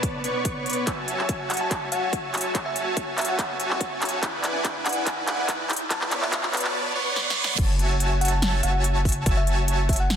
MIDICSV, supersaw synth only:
0, 0, Header, 1, 2, 480
1, 0, Start_track
1, 0, Key_signature, 3, "minor"
1, 0, Tempo, 419580
1, 995, Time_signature, 4, 2, 24, 8
1, 11625, End_track
2, 0, Start_track
2, 0, Title_t, "Supersaw synth"
2, 0, Program_c, 0, 81
2, 0, Note_on_c, 0, 59, 95
2, 0, Note_on_c, 0, 71, 89
2, 0, Note_on_c, 0, 73, 85
2, 0, Note_on_c, 0, 74, 85
2, 0, Note_on_c, 0, 81, 104
2, 247, Note_off_c, 0, 59, 0
2, 247, Note_off_c, 0, 74, 0
2, 247, Note_off_c, 0, 81, 0
2, 248, Note_off_c, 0, 71, 0
2, 248, Note_off_c, 0, 73, 0
2, 275, Note_on_c, 0, 59, 77
2, 275, Note_on_c, 0, 71, 70
2, 275, Note_on_c, 0, 73, 70
2, 275, Note_on_c, 0, 74, 71
2, 275, Note_on_c, 0, 85, 82
2, 968, Note_off_c, 0, 59, 0
2, 968, Note_off_c, 0, 71, 0
2, 968, Note_off_c, 0, 73, 0
2, 968, Note_off_c, 0, 74, 0
2, 968, Note_off_c, 0, 85, 0
2, 995, Note_on_c, 0, 66, 93
2, 995, Note_on_c, 0, 73, 87
2, 995, Note_on_c, 0, 76, 90
2, 995, Note_on_c, 0, 80, 87
2, 995, Note_on_c, 0, 81, 106
2, 2167, Note_off_c, 0, 66, 0
2, 2167, Note_off_c, 0, 76, 0
2, 2167, Note_off_c, 0, 81, 0
2, 2168, Note_off_c, 0, 73, 0
2, 2168, Note_off_c, 0, 80, 0
2, 2195, Note_on_c, 0, 66, 79
2, 2195, Note_on_c, 0, 73, 72
2, 2195, Note_on_c, 0, 76, 72
2, 2195, Note_on_c, 0, 80, 72
2, 2195, Note_on_c, 0, 81, 86
2, 2887, Note_off_c, 0, 73, 0
2, 2887, Note_off_c, 0, 76, 0
2, 2887, Note_off_c, 0, 80, 0
2, 2887, Note_off_c, 0, 81, 0
2, 2888, Note_off_c, 0, 66, 0
2, 2915, Note_on_c, 0, 66, 96
2, 2915, Note_on_c, 0, 73, 87
2, 2915, Note_on_c, 0, 76, 90
2, 2915, Note_on_c, 0, 80, 90
2, 2915, Note_on_c, 0, 81, 107
2, 4087, Note_off_c, 0, 73, 0
2, 4087, Note_off_c, 0, 80, 0
2, 4087, Note_off_c, 0, 81, 0
2, 4088, Note_off_c, 0, 66, 0
2, 4088, Note_off_c, 0, 76, 0
2, 4114, Note_on_c, 0, 66, 81
2, 4114, Note_on_c, 0, 76, 71
2, 4114, Note_on_c, 0, 81, 88
2, 4115, Note_on_c, 0, 73, 71
2, 4115, Note_on_c, 0, 80, 74
2, 4807, Note_off_c, 0, 66, 0
2, 4807, Note_off_c, 0, 73, 0
2, 4807, Note_off_c, 0, 76, 0
2, 4807, Note_off_c, 0, 80, 0
2, 4807, Note_off_c, 0, 81, 0
2, 4834, Note_on_c, 0, 64, 100
2, 4834, Note_on_c, 0, 71, 90
2, 4834, Note_on_c, 0, 74, 87
2, 4834, Note_on_c, 0, 78, 88
2, 4834, Note_on_c, 0, 80, 107
2, 6007, Note_off_c, 0, 64, 0
2, 6007, Note_off_c, 0, 71, 0
2, 6007, Note_off_c, 0, 74, 0
2, 6007, Note_off_c, 0, 78, 0
2, 6007, Note_off_c, 0, 80, 0
2, 6035, Note_on_c, 0, 64, 79
2, 6035, Note_on_c, 0, 71, 72
2, 6035, Note_on_c, 0, 74, 75
2, 6035, Note_on_c, 0, 78, 72
2, 6035, Note_on_c, 0, 80, 88
2, 6501, Note_off_c, 0, 64, 0
2, 6501, Note_off_c, 0, 71, 0
2, 6501, Note_off_c, 0, 74, 0
2, 6501, Note_off_c, 0, 78, 0
2, 6501, Note_off_c, 0, 80, 0
2, 6755, Note_on_c, 0, 59, 98
2, 6755, Note_on_c, 0, 71, 89
2, 6755, Note_on_c, 0, 73, 88
2, 6755, Note_on_c, 0, 74, 90
2, 6755, Note_on_c, 0, 81, 108
2, 7927, Note_off_c, 0, 59, 0
2, 7927, Note_off_c, 0, 71, 0
2, 7927, Note_off_c, 0, 73, 0
2, 7927, Note_off_c, 0, 74, 0
2, 7927, Note_off_c, 0, 81, 0
2, 7955, Note_on_c, 0, 59, 78
2, 7955, Note_on_c, 0, 71, 73
2, 7955, Note_on_c, 0, 73, 75
2, 7955, Note_on_c, 0, 74, 73
2, 7955, Note_on_c, 0, 85, 88
2, 8647, Note_off_c, 0, 59, 0
2, 8647, Note_off_c, 0, 71, 0
2, 8647, Note_off_c, 0, 73, 0
2, 8648, Note_off_c, 0, 74, 0
2, 8648, Note_off_c, 0, 85, 0
2, 8675, Note_on_c, 0, 66, 94
2, 8675, Note_on_c, 0, 73, 89
2, 8675, Note_on_c, 0, 76, 88
2, 8675, Note_on_c, 0, 80, 88
2, 8675, Note_on_c, 0, 81, 110
2, 9847, Note_off_c, 0, 66, 0
2, 9847, Note_off_c, 0, 73, 0
2, 9847, Note_off_c, 0, 76, 0
2, 9847, Note_off_c, 0, 80, 0
2, 9847, Note_off_c, 0, 81, 0
2, 9876, Note_on_c, 0, 66, 79
2, 9876, Note_on_c, 0, 73, 71
2, 9876, Note_on_c, 0, 76, 72
2, 9876, Note_on_c, 0, 80, 72
2, 9876, Note_on_c, 0, 81, 85
2, 10568, Note_off_c, 0, 66, 0
2, 10568, Note_off_c, 0, 73, 0
2, 10568, Note_off_c, 0, 76, 0
2, 10568, Note_off_c, 0, 80, 0
2, 10568, Note_off_c, 0, 81, 0
2, 10596, Note_on_c, 0, 66, 99
2, 10596, Note_on_c, 0, 73, 88
2, 10596, Note_on_c, 0, 76, 89
2, 10596, Note_on_c, 0, 80, 90
2, 10596, Note_on_c, 0, 81, 106
2, 11625, Note_off_c, 0, 66, 0
2, 11625, Note_off_c, 0, 73, 0
2, 11625, Note_off_c, 0, 76, 0
2, 11625, Note_off_c, 0, 80, 0
2, 11625, Note_off_c, 0, 81, 0
2, 11625, End_track
0, 0, End_of_file